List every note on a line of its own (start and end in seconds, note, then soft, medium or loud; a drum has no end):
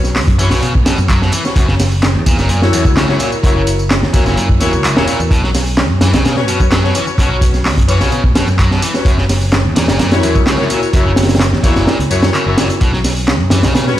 0.00 0.27 B1 loud
0.00 snare soft
0.05 tambourine soft
0.16 snare soft
0.16 clap loud
0.16 open hi-hat medium
0.16 tambourine soft
0.27 0.37 F#2 loud
0.27 kick loud
0.27 closed hi-hat medium
0.39 0.49 F#2 medium
0.39 0.49 E3 medium
0.39 0.52 C#4 medium
0.39 0.52 F#4 medium
0.39 0.52 B4 medium
0.39 0.52 C#5 loud
0.39 ride medium
0.39 tambourine medium
0.50 0.60 B1 loud
0.50 0.60 C#3 loud
0.50 snare soft
0.50 open hi-hat medium
0.50 tambourine soft
0.62 0.86 B2 medium
0.62 0.72 C#3 loud
0.62 closed hi-hat medium
0.62 tambourine soft
0.75 kick loud
0.86 0.96 F#2 loud
0.86 0.97 B2 loud
0.86 snare loud
0.86 closed hi-hat medium
0.86 ride medium
0.86 tambourine medium
0.98 1.29 F#2 loud
0.98 tambourine soft
1.09 1.20 F#3 medium
1.09 kick medium
1.09 clap loud
1.09 closed hi-hat medium
1.09 tambourine soft
1.22 1.31 B2 medium
1.22 snare soft
1.32 1.43 E3 medium
1.32 closed hi-hat medium
1.32 ride medium
1.32 tambourine medium
1.45 1.55 C#4 medium
1.45 1.55 F#4 medium
1.45 1.55 B4 medium
1.45 1.55 C#5 medium
1.45 snare soft
1.45 tambourine soft
1.56 2.17 F#1 loud
1.56 1.66 F#2 loud
1.56 kick loud
1.56 closed hi-hat loud
1.56 tambourine soft
1.68 1.74 C#3 medium
1.68 snare soft
1.79 snare medium
1.79 open hi-hat medium
1.79 ride medium
1.79 tambourine medium
1.92 tambourine soft
2.02 snare loud
2.02 clap loud
2.02 closed hi-hat medium
2.02 tambourine soft
2.15 2.24 E2 loud
2.26 2.36 E2 medium
2.26 2.36 A#2 medium
2.26 kick medium
2.26 closed hi-hat medium
2.26 ride medium
2.26 tambourine medium
2.38 2.48 F#1 loud
2.38 2.48 A#2 loud
2.38 snare soft
2.38 tambourine soft
2.49 2.73 F#2 medium
2.49 2.60 A#2 loud
2.49 closed hi-hat medium
2.49 tambourine soft
2.62 2.83 E4 loud
2.62 2.83 F#4 loud
2.62 2.83 A#4 medium
2.62 2.83 C#5 loud
2.62 snare medium
2.73 2.86 E2 loud
2.73 2.85 F#2 loud
2.73 closed hi-hat medium
2.73 ride medium
2.73 tambourine medium
2.85 3.16 C#2 loud
2.85 kick medium
2.85 tambourine soft
2.96 3.08 C#3 medium
2.96 snare loud
2.96 clap loud
2.96 closed hi-hat medium
2.96 tambourine soft
3.09 3.19 F#2 medium
3.09 3.18 E4 medium
3.09 3.18 F#4 medium
3.09 3.18 A#4 medium
3.09 3.18 C#5 loud
3.09 snare soft
3.19 3.30 A#2 medium
3.19 3.40 E4 medium
3.19 3.40 F#4 medium
3.19 3.40 A#4 medium
3.19 3.40 C#5 loud
3.19 closed hi-hat medium
3.19 ride medium
3.19 tambourine medium
3.32 tambourine soft
3.43 4.04 F#1 loud
3.43 3.53 F#2 loud
3.43 3.64 E4 medium
3.43 3.64 F#4 medium
3.43 3.64 A#4 medium
3.43 3.64 C#5 loud
3.43 kick loud
3.43 closed hi-hat loud
3.43 tambourine soft
3.55 3.61 C#3 medium
3.67 closed hi-hat medium
3.67 ride medium
3.67 tambourine medium
3.79 tambourine soft
3.90 snare loud
3.90 clap loud
3.90 closed hi-hat medium
3.90 tambourine soft
4.02 4.12 E2 loud
4.02 snare soft
4.13 4.24 E2 medium
4.13 4.24 A#2 medium
4.13 4.27 E4 loud
4.13 4.27 F#4 medium
4.13 4.27 A#4 medium
4.13 4.27 C#5 loud
4.13 kick loud
4.13 closed hi-hat medium
4.13 ride medium
4.13 tambourine medium
4.26 4.35 F#1 loud
4.26 4.35 A#2 loud
4.26 snare soft
4.26 tambourine soft
4.37 4.60 F#2 medium
4.37 4.47 A#2 loud
4.37 closed hi-hat medium
4.37 tambourine soft
4.49 kick medium
4.60 4.74 E2 medium
4.60 4.72 A#2 medium
4.60 4.74 E4 loud
4.60 4.74 F#4 medium
4.60 4.74 A#4 medium
4.60 4.74 C#5 loud
4.60 snare soft
4.60 closed hi-hat medium
4.60 ride medium
4.60 tambourine medium
4.73 4.96 C#2 loud
4.73 tambourine soft
4.84 4.95 F#2 medium
4.84 clap loud
4.84 closed hi-hat medium
4.84 tambourine soft
4.96 5.05 E1 medium
4.96 5.05 A#2 medium
4.96 5.09 E4 medium
4.96 5.09 F#4 medium
4.96 5.09 A#4 medium
4.96 5.09 C#5 loud
4.96 snare loud
5.08 5.19 A#2 medium
5.08 closed hi-hat medium
5.08 ride medium
5.08 tambourine medium
5.20 5.29 E2 medium
5.20 tambourine soft
5.31 5.90 B1 loud
5.31 5.41 B2 loud
5.31 kick loud
5.31 closed hi-hat medium
5.31 tambourine soft
5.43 5.49 F#3 medium
5.43 snare soft
5.55 snare medium
5.55 open hi-hat medium
5.55 ride medium
5.55 tambourine medium
5.67 tambourine soft
5.77 snare loud
5.77 clap loud
5.77 closed hi-hat medium
5.77 tambourine soft
5.90 5.99 F#2 loud
6.01 6.11 F#2 medium
6.01 6.11 E3 medium
6.01 snare loud
6.01 closed hi-hat medium
6.01 ride medium
6.01 tambourine medium
6.13 6.23 B1 loud
6.13 6.23 C#3 loud
6.13 snare loud
6.13 closed hi-hat medium
6.13 tambourine soft
6.25 6.48 B2 medium
6.25 6.35 C#3 loud
6.25 snare medium
6.25 closed hi-hat medium
6.25 tambourine soft
6.37 6.58 C#4 loud
6.37 6.58 F#4 medium
6.37 6.58 B4 medium
6.37 6.58 C#5 loud
6.37 snare soft
6.48 6.58 F#2 medium
6.48 6.60 B2 loud
6.48 closed hi-hat medium
6.48 ride medium
6.48 tambourine medium
6.60 6.92 F#2 loud
6.60 kick medium
6.60 tambourine soft
6.71 6.83 F#3 medium
6.71 snare loud
6.71 clap loud
6.71 closed hi-hat medium
6.71 tambourine soft
6.84 6.94 B2 medium
6.84 6.93 C#4 medium
6.84 6.93 F#4 medium
6.84 6.93 B4 medium
6.84 6.93 C#5 loud
6.84 snare soft
6.95 7.05 E3 medium
6.95 7.15 C#4 medium
6.95 7.15 F#4 medium
6.95 7.15 B4 medium
6.95 7.15 C#5 loud
6.95 closed hi-hat medium
6.95 ride medium
6.95 tambourine medium
7.07 tambourine soft
7.18 7.78 B1 loud
7.18 7.28 B2 loud
7.18 7.39 C#4 loud
7.18 7.39 F#4 medium
7.18 7.39 B4 medium
7.18 7.39 C#5 loud
7.18 kick loud
7.18 closed hi-hat medium
7.18 tambourine soft
7.30 7.36 F#3 medium
7.41 kick loud
7.41 closed hi-hat medium
7.41 ride medium
7.41 tambourine medium
7.54 snare soft
7.54 tambourine soft
7.65 snare medium
7.65 clap loud
7.65 open hi-hat medium
7.65 tambourine soft
7.78 7.87 F#2 loud
7.78 kick loud
7.78 closed hi-hat medium
7.88 7.99 F#2 medium
7.88 7.99 E3 medium
7.88 8.02 C#4 medium
7.88 8.02 F#4 medium
7.88 8.02 B4 medium
7.88 8.02 C#5 loud
7.88 ride medium
7.88 tambourine medium
8.01 8.10 B1 loud
8.01 8.10 C#3 loud
8.01 snare soft
8.01 open hi-hat medium
8.01 tambourine soft
8.12 8.35 B2 medium
8.12 8.22 C#3 loud
8.12 closed hi-hat medium
8.12 tambourine soft
8.24 kick medium
8.35 8.45 F#2 loud
8.35 8.47 B2 loud
8.35 snare loud
8.35 closed hi-hat medium
8.35 ride medium
8.35 tambourine medium
8.48 8.79 F#2 loud
8.48 tambourine soft
8.58 8.70 F#3 medium
8.58 kick medium
8.58 clap loud
8.58 closed hi-hat medium
8.58 tambourine soft
8.71 8.81 B2 medium
8.71 snare soft
8.82 8.92 E3 medium
8.82 closed hi-hat medium
8.82 ride medium
8.82 tambourine medium
8.94 9.04 C#4 medium
8.94 9.05 F#4 medium
8.94 9.05 B4 medium
8.94 9.04 C#5 medium
8.94 snare soft
8.94 tambourine soft
9.05 9.66 F#1 loud
9.05 9.16 F#2 loud
9.05 kick loud
9.05 closed hi-hat medium
9.05 tambourine soft
9.18 9.24 C#3 medium
9.18 snare soft
9.29 snare medium
9.29 open hi-hat medium
9.29 ride medium
9.29 tambourine medium
9.42 tambourine soft
9.52 snare loud
9.52 clap loud
9.52 closed hi-hat medium
9.52 tambourine soft
9.65 9.74 E2 loud
9.76 9.86 E2 medium
9.76 9.86 A#2 medium
9.76 snare loud
9.76 closed hi-hat medium
9.76 ride medium
9.76 tambourine medium
9.88 9.98 F#1 loud
9.88 9.98 A#2 loud
9.88 snare loud
9.88 closed hi-hat medium
9.88 tambourine soft
9.99 10.23 F#2 medium
9.99 10.10 A#2 loud
9.99 snare loud
9.99 closed hi-hat medium
9.99 tambourine soft
10.12 10.33 E4 loud
10.12 10.33 F#4 medium
10.12 10.33 A#4 medium
10.12 10.33 C#5 loud
10.12 snare loud
10.12 closed hi-hat medium
10.23 10.37 E2 medium
10.23 10.35 F#2 loud
10.23 closed hi-hat medium
10.23 ride medium
10.23 tambourine medium
10.35 10.67 C#2 loud
10.35 kick loud
10.35 tambourine soft
10.46 10.57 C#3 medium
10.46 snare loud
10.46 clap loud
10.46 closed hi-hat medium
10.46 tambourine soft
10.58 10.69 F#2 medium
10.58 10.68 E4 medium
10.58 10.68 F#4 medium
10.58 10.68 A#4 medium
10.58 10.68 C#5 loud
10.58 snare soft
10.70 10.80 A#2 medium
10.70 10.90 E4 medium
10.70 10.90 F#4 medium
10.70 10.90 A#4 medium
10.70 10.90 C#5 loud
10.70 closed hi-hat medium
10.70 ride medium
10.70 tambourine medium
10.83 tambourine soft
10.93 11.54 F#1 medium
10.93 11.03 F#2 loud
10.93 11.14 E4 loud
10.93 11.14 F#4 medium
10.93 11.14 A#4 medium
10.93 11.14 C#5 loud
10.93 kick loud
10.93 closed hi-hat medium
10.93 tambourine soft
11.06 11.11 C#3 medium
11.16 snare loud
11.16 closed hi-hat medium
11.16 ride medium
11.16 tambourine medium
11.23 snare medium
11.23 closed hi-hat medium
11.29 snare medium
11.29 closed hi-hat medium
11.29 tambourine soft
11.35 snare medium
11.35 closed hi-hat medium
11.40 snare loud
11.40 clap loud
11.40 closed hi-hat medium
11.40 tambourine soft
11.53 11.62 E2 loud
11.53 snare soft
11.63 11.74 E2 medium
11.63 11.74 A#2 medium
11.63 11.77 E4 medium
11.63 11.77 F#4 medium
11.63 11.77 A#4 medium
11.63 11.77 C#5 loud
11.63 kick loud
11.63 closed hi-hat medium
11.63 ride medium
11.63 tambourine medium
11.76 11.85 F#1 loud
11.76 11.85 A#2 medium
11.76 snare medium
11.76 tambourine soft
11.87 11.97 A#2 loud
11.87 snare loud
11.87 tambourine soft
11.99 12.09 C#2 medium
11.99 closed hi-hat medium
12.11 12.22 F#2 loud
12.11 12.30 F#2 medium
12.11 12.24 E4 loud
12.11 12.24 F#4 medium
12.11 12.24 A#4 medium
12.11 12.24 C#5 loud
12.11 ride medium
12.11 tambourine medium
12.23 snare loud
12.23 tambourine soft
12.34 12.45 C#3 medium
12.34 clap loud
12.34 closed hi-hat medium
12.34 tambourine soft
12.46 12.55 F#1 medium
12.46 12.56 F#2 medium
12.46 12.59 E4 medium
12.46 12.59 F#4 medium
12.46 12.59 A#4 medium
12.46 12.59 C#5 loud
12.57 12.68 F#1 medium
12.57 12.67 A#2 medium
12.57 snare loud
12.57 ride medium
12.57 tambourine medium
12.70 closed hi-hat medium
12.70 tambourine soft
12.81 13.40 B1 loud
12.81 12.91 B2 medium
12.81 14.00 C#4 medium
12.81 14.00 F#4 medium
12.81 14.00 B4 medium
12.81 kick loud
12.81 closed hi-hat medium
12.81 tambourine soft
12.93 12.99 F#3 medium
12.93 snare soft
13.04 snare medium
13.04 open hi-hat medium
13.04 ride medium
13.04 tambourine medium
13.17 tambourine soft
13.28 snare loud
13.28 clap loud
13.28 closed hi-hat medium
13.28 tambourine soft
13.40 13.49 F#2 loud
13.50 13.61 F#2 medium
13.50 13.61 E3 medium
13.50 snare loud
13.50 closed hi-hat medium
13.50 ride medium
13.50 tambourine medium
13.63 13.73 B1 loud
13.63 13.73 C#3 loud
13.63 snare loud
13.63 closed hi-hat medium
13.63 tambourine soft
13.75 13.98 B2 medium
13.75 13.85 C#3 loud
13.75 snare loud
13.75 closed hi-hat medium
13.75 tambourine soft
13.87 14.00 C#4 loud
13.87 14.00 F#4 medium
13.87 14.00 B4 loud
13.87 14.00 C#5 loud
13.87 snare soft